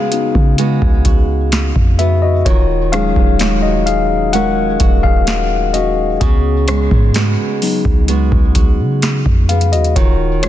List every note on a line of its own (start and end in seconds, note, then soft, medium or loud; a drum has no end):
0.00 2.46 C#3 medium
0.00 0.58 G#3 medium
0.00 0.13 B3 medium
0.00 0.58 B3 medium
0.00 0.59 F#4 medium
0.00 2.48 G#4 medium
0.00 0.54 F5 medium
0.12 2.43 B3 medium
0.12 2.43 D#4 medium
0.12 1.99 F#4 medium
0.12 closed hi-hat medium
0.35 0.80 C#3 loud
0.35 kick medium
0.58 2.93 G#3 medium
0.58 1.98 B3 medium
0.58 1.05 F#4 medium
0.58 closed hi-hat medium
0.82 1.72 C#2 loud
0.82 kick medium
1.05 2.46 F#4 medium
1.05 kick medium
1.05 closed hi-hat medium
1.52 snare loud
1.52 closed hi-hat medium
1.76 2.43 F2 loud
1.76 kick medium
1.99 2.55 B3 medium
1.99 2.22 F#4 medium
1.99 2.23 E5 medium
1.99 closed hi-hat medium
2.22 2.45 F#4 medium
2.22 2.44 D#5 medium
2.45 3.14 D#1 loud
2.45 6.21 D#3 medium
2.45 2.90 F4 medium
2.45 3.41 F#4 medium
2.45 2.94 C#5 loud
2.45 kick loud
2.45 closed hi-hat medium
2.92 6.17 F#3 medium
2.92 3.39 G#3 medium
2.92 6.17 G#3 medium
2.92 6.18 C#4 medium
2.92 6.18 D#4 medium
2.92 3.60 G#4 medium
2.92 3.65 F5 loud
2.92 cross-stick medium
2.92 closed hi-hat medium
3.16 4.77 D#1 medium
3.16 kick medium
3.39 4.33 G#3 medium
3.39 4.34 C#4 medium
3.39 4.35 F#4 medium
3.39 snare loud
3.39 closed hi-hat medium
3.62 3.86 F#4 medium
3.62 3.87 D#5 medium
3.86 4.31 G#4 medium
3.86 4.35 F5 loud
3.86 closed hi-hat medium
4.33 6.68 G#3 medium
4.33 5.74 C#4 medium
4.33 4.80 F#4 medium
4.33 5.01 A#4 medium
4.33 5.06 F#5 loud
4.33 closed hi-hat medium
4.80 6.17 D#1 loud
4.80 6.21 F#4 medium
4.80 kick loud
4.80 closed hi-hat medium
5.03 5.71 G#4 medium
5.03 5.76 F5 loud
5.03 kick medium
5.27 snare loud
5.27 closed hi-hat medium
5.74 7.15 C#4 medium
5.74 6.19 F#4 medium
5.74 6.22 D#5 medium
5.74 closed hi-hat medium
6.20 6.89 C#2 loud
6.20 9.96 C#3 medium
6.20 7.61 B3 medium
6.20 7.16 F#4 medium
6.20 8.98 G#4 medium
6.20 kick loud
6.20 closed hi-hat medium
6.68 7.15 G#3 medium
6.68 cross-stick loud
6.68 closed hi-hat medium
6.91 7.36 G#2 loud
6.91 kick medium
7.14 8.08 G#3 medium
7.14 8.08 B3 medium
7.14 8.09 F#4 medium
7.14 snare loud
7.14 closed hi-hat medium
7.62 8.99 F#3 medium
7.62 8.99 B3 medium
7.62 8.99 D#4 medium
7.62 open hi-hat medium
7.85 8.30 C#2 loud
7.85 kick medium
8.08 10.42 G#3 medium
8.08 9.48 B3 medium
8.08 8.55 F#4 medium
8.08 closed hi-hat medium
8.32 8.81 C#2 loud
8.32 kick medium
8.55 9.96 F#4 medium
8.55 kick medium
8.55 closed hi-hat medium
8.79 9.24 C#3 loud
9.02 snare loud
9.02 closed hi-hat medium
9.26 9.75 F2 loud
9.26 kick medium
9.49 10.06 B3 medium
9.49 9.72 G#4 medium
9.49 9.73 F5 medium
9.49 closed hi-hat medium
9.49 open hi-hat medium
9.61 closed hi-hat medium
9.72 9.95 D#2 loud
9.72 9.84 F#4 medium
9.72 9.83 D#5 medium
9.72 closed hi-hat medium
9.84 closed hi-hat soft
9.96 10.49 D#1 loud
9.96 10.49 D#3 medium
9.96 10.41 F4 medium
9.96 10.49 F#4 medium
9.96 10.41 C#5 medium
9.96 kick loud
9.96 closed hi-hat medium
10.43 10.49 G#3 medium
10.43 10.49 F4 medium
10.43 10.49 C#5 medium
10.43 cross-stick loud
10.43 closed hi-hat medium